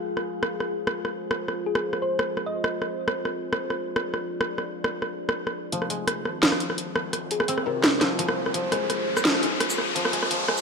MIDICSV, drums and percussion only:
0, 0, Header, 1, 2, 480
1, 0, Start_track
1, 0, Tempo, 352941
1, 102, Time_signature, 4, 2, 24, 8
1, 14431, End_track
2, 0, Start_track
2, 0, Title_t, "Drums"
2, 230, Note_on_c, 9, 37, 46
2, 366, Note_off_c, 9, 37, 0
2, 580, Note_on_c, 9, 37, 71
2, 716, Note_off_c, 9, 37, 0
2, 821, Note_on_c, 9, 37, 46
2, 957, Note_off_c, 9, 37, 0
2, 1186, Note_on_c, 9, 37, 72
2, 1322, Note_off_c, 9, 37, 0
2, 1426, Note_on_c, 9, 37, 47
2, 1562, Note_off_c, 9, 37, 0
2, 1779, Note_on_c, 9, 37, 71
2, 1915, Note_off_c, 9, 37, 0
2, 2017, Note_on_c, 9, 37, 49
2, 2153, Note_off_c, 9, 37, 0
2, 2383, Note_on_c, 9, 37, 74
2, 2519, Note_off_c, 9, 37, 0
2, 2625, Note_on_c, 9, 37, 49
2, 2761, Note_off_c, 9, 37, 0
2, 2980, Note_on_c, 9, 37, 75
2, 3116, Note_off_c, 9, 37, 0
2, 3224, Note_on_c, 9, 37, 46
2, 3360, Note_off_c, 9, 37, 0
2, 3592, Note_on_c, 9, 37, 74
2, 3728, Note_off_c, 9, 37, 0
2, 3831, Note_on_c, 9, 37, 47
2, 3967, Note_off_c, 9, 37, 0
2, 4184, Note_on_c, 9, 37, 81
2, 4320, Note_off_c, 9, 37, 0
2, 4424, Note_on_c, 9, 37, 54
2, 4560, Note_off_c, 9, 37, 0
2, 4795, Note_on_c, 9, 37, 76
2, 4931, Note_off_c, 9, 37, 0
2, 5036, Note_on_c, 9, 37, 51
2, 5172, Note_off_c, 9, 37, 0
2, 5387, Note_on_c, 9, 37, 75
2, 5523, Note_off_c, 9, 37, 0
2, 5626, Note_on_c, 9, 37, 51
2, 5762, Note_off_c, 9, 37, 0
2, 5993, Note_on_c, 9, 37, 78
2, 6129, Note_off_c, 9, 37, 0
2, 6231, Note_on_c, 9, 37, 49
2, 6367, Note_off_c, 9, 37, 0
2, 6587, Note_on_c, 9, 37, 75
2, 6723, Note_off_c, 9, 37, 0
2, 6829, Note_on_c, 9, 37, 51
2, 6965, Note_off_c, 9, 37, 0
2, 7192, Note_on_c, 9, 37, 79
2, 7328, Note_off_c, 9, 37, 0
2, 7437, Note_on_c, 9, 37, 52
2, 7573, Note_off_c, 9, 37, 0
2, 7785, Note_on_c, 9, 42, 82
2, 7912, Note_on_c, 9, 37, 50
2, 7921, Note_off_c, 9, 42, 0
2, 8025, Note_on_c, 9, 42, 69
2, 8048, Note_off_c, 9, 37, 0
2, 8161, Note_off_c, 9, 42, 0
2, 8262, Note_on_c, 9, 37, 80
2, 8262, Note_on_c, 9, 42, 76
2, 8398, Note_off_c, 9, 37, 0
2, 8398, Note_off_c, 9, 42, 0
2, 8505, Note_on_c, 9, 37, 52
2, 8641, Note_off_c, 9, 37, 0
2, 8743, Note_on_c, 9, 38, 112
2, 8743, Note_on_c, 9, 42, 83
2, 8869, Note_on_c, 9, 37, 75
2, 8879, Note_off_c, 9, 38, 0
2, 8879, Note_off_c, 9, 42, 0
2, 8980, Note_on_c, 9, 42, 60
2, 9005, Note_off_c, 9, 37, 0
2, 9110, Note_on_c, 9, 37, 51
2, 9116, Note_off_c, 9, 42, 0
2, 9221, Note_on_c, 9, 42, 79
2, 9246, Note_off_c, 9, 37, 0
2, 9357, Note_off_c, 9, 42, 0
2, 9459, Note_on_c, 9, 37, 84
2, 9595, Note_off_c, 9, 37, 0
2, 9698, Note_on_c, 9, 37, 51
2, 9698, Note_on_c, 9, 42, 80
2, 9834, Note_off_c, 9, 37, 0
2, 9834, Note_off_c, 9, 42, 0
2, 9939, Note_on_c, 9, 42, 67
2, 10064, Note_on_c, 9, 37, 78
2, 10075, Note_off_c, 9, 42, 0
2, 10175, Note_on_c, 9, 42, 83
2, 10200, Note_off_c, 9, 37, 0
2, 10304, Note_on_c, 9, 37, 53
2, 10311, Note_off_c, 9, 42, 0
2, 10440, Note_off_c, 9, 37, 0
2, 10657, Note_on_c, 9, 37, 76
2, 10657, Note_on_c, 9, 38, 116
2, 10657, Note_on_c, 9, 42, 80
2, 10793, Note_off_c, 9, 37, 0
2, 10793, Note_off_c, 9, 38, 0
2, 10793, Note_off_c, 9, 42, 0
2, 10894, Note_on_c, 9, 37, 50
2, 10894, Note_on_c, 9, 38, 57
2, 10894, Note_on_c, 9, 42, 65
2, 11030, Note_off_c, 9, 37, 0
2, 11030, Note_off_c, 9, 38, 0
2, 11030, Note_off_c, 9, 42, 0
2, 11138, Note_on_c, 9, 42, 82
2, 11268, Note_on_c, 9, 37, 82
2, 11274, Note_off_c, 9, 42, 0
2, 11404, Note_off_c, 9, 37, 0
2, 11508, Note_on_c, 9, 37, 52
2, 11618, Note_on_c, 9, 42, 83
2, 11644, Note_off_c, 9, 37, 0
2, 11754, Note_off_c, 9, 42, 0
2, 11859, Note_on_c, 9, 37, 77
2, 11859, Note_on_c, 9, 42, 66
2, 11995, Note_off_c, 9, 37, 0
2, 11995, Note_off_c, 9, 42, 0
2, 12101, Note_on_c, 9, 37, 51
2, 12101, Note_on_c, 9, 42, 83
2, 12237, Note_off_c, 9, 37, 0
2, 12237, Note_off_c, 9, 42, 0
2, 12468, Note_on_c, 9, 37, 73
2, 12468, Note_on_c, 9, 82, 36
2, 12580, Note_on_c, 9, 38, 123
2, 12580, Note_on_c, 9, 42, 79
2, 12604, Note_off_c, 9, 37, 0
2, 12604, Note_off_c, 9, 82, 0
2, 12713, Note_on_c, 9, 37, 53
2, 12716, Note_off_c, 9, 38, 0
2, 12716, Note_off_c, 9, 42, 0
2, 12823, Note_on_c, 9, 42, 67
2, 12849, Note_off_c, 9, 37, 0
2, 12959, Note_off_c, 9, 42, 0
2, 13062, Note_on_c, 9, 37, 78
2, 13062, Note_on_c, 9, 42, 85
2, 13191, Note_on_c, 9, 82, 64
2, 13198, Note_off_c, 9, 37, 0
2, 13198, Note_off_c, 9, 42, 0
2, 13305, Note_on_c, 9, 37, 54
2, 13327, Note_off_c, 9, 82, 0
2, 13441, Note_off_c, 9, 37, 0
2, 13543, Note_on_c, 9, 42, 81
2, 13670, Note_on_c, 9, 37, 77
2, 13679, Note_off_c, 9, 42, 0
2, 13780, Note_on_c, 9, 42, 67
2, 13806, Note_off_c, 9, 37, 0
2, 13907, Note_on_c, 9, 37, 51
2, 13916, Note_off_c, 9, 42, 0
2, 14020, Note_on_c, 9, 42, 79
2, 14043, Note_off_c, 9, 37, 0
2, 14156, Note_off_c, 9, 42, 0
2, 14258, Note_on_c, 9, 37, 70
2, 14383, Note_on_c, 9, 82, 36
2, 14394, Note_off_c, 9, 37, 0
2, 14431, Note_off_c, 9, 82, 0
2, 14431, End_track
0, 0, End_of_file